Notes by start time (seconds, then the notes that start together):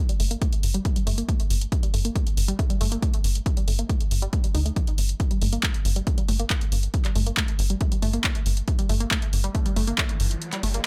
0.09 G3, closed hi-hat
0.20 G1 A3, open hi-hat
0.31 A#3, closed hi-hat
0.42 A3, kick, closed hi-hat
0.53 closed hi-hat
0.63 G1, open hi-hat
0.74 G3, closed hi-hat
0.85 A3, kick, closed hi-hat
0.96 G3, closed hi-hat
1.07 G1 A3, open hi-hat
1.18 A#3, closed hi-hat
1.29 A3, kick, closed hi-hat
1.40 closed hi-hat
1.50 G1, open hi-hat
1.61 closed hi-hat
1.72 kick, closed hi-hat
1.83 G3, closed hi-hat
1.94 G1 A3, open hi-hat
2.05 A#3, closed hi-hat
2.16 A3, kick, closed hi-hat
2.27 closed hi-hat
2.37 G1, open hi-hat
2.48 G3, closed hi-hat
2.59 A3, kick, closed hi-hat
2.70 G3, closed hi-hat
2.81 G1 A3, open hi-hat
2.92 A#3, closed hi-hat
3.02 A3, kick, closed hi-hat
3.14 closed hi-hat
3.24 G1, open hi-hat
3.35 closed hi-hat
3.46 kick, closed hi-hat
3.57 G3, closed hi-hat
3.68 G1 A3, open hi-hat
3.79 A#3, closed hi-hat
3.89 A3, kick, closed hi-hat
4.00 closed hi-hat
4.11 G1, open hi-hat
4.22 G3, closed hi-hat
4.33 A3, kick, closed hi-hat
4.44 G3, closed hi-hat
4.55 D2 D#4, open hi-hat
4.66 A3, closed hi-hat
4.76 F3, kick, closed hi-hat
4.87 closed hi-hat
4.98 G1, open hi-hat
5.09 closed hi-hat
5.20 kick, closed hi-hat
5.31 G3, closed hi-hat
5.42 G1 A3, open hi-hat
5.53 A#3, closed hi-hat
5.63 A3, kick, clap, closed hi-hat
5.74 closed hi-hat
5.85 G1, open hi-hat
5.96 G3, closed hi-hat
6.07 A3, kick, closed hi-hat
6.18 G3, closed hi-hat
6.28 G1 A3, open hi-hat
6.39 A#3, closed hi-hat
6.50 A3, kick, clap, closed hi-hat
6.61 closed hi-hat
6.72 G1, open hi-hat
6.83 closed hi-hat
6.94 kick, closed hi-hat
7.05 G3, clap, closed hi-hat
7.15 G1 A3, open hi-hat
7.26 A#3, closed hi-hat
7.37 A3, kick, clap, closed hi-hat
7.48 closed hi-hat
7.59 G1, open hi-hat
7.70 G3, closed hi-hat
7.81 A3, kick, closed hi-hat
7.92 G3, closed hi-hat
8.02 G1 A3, open hi-hat
8.13 A#3, closed hi-hat
8.24 A3, kick, clap, closed hi-hat
8.35 closed hi-hat
8.46 G1, open hi-hat
8.57 closed hi-hat
8.68 kick, closed hi-hat, riser
8.79 G3, closed hi-hat
8.89 G1 A3, open hi-hat
9.00 A#3, closed hi-hat
9.11 A3, kick, clap, closed hi-hat
9.22 closed hi-hat
9.33 G1, open hi-hat
9.44 G3, closed hi-hat
9.55 A3, kick, closed hi-hat
9.66 G3, closed hi-hat
9.76 G1 A3, open hi-hat
9.87 A#3, closed hi-hat
9.98 A3, kick, clap, closed hi-hat
10.09 closed hi-hat
10.20 G1, open hi-hat
10.31 closed hi-hat
10.42 closed hi-hat
10.53 G3, clap, closed hi-hat
10.63 G1 A3, open hi-hat
10.74 A#3, closed hi-hat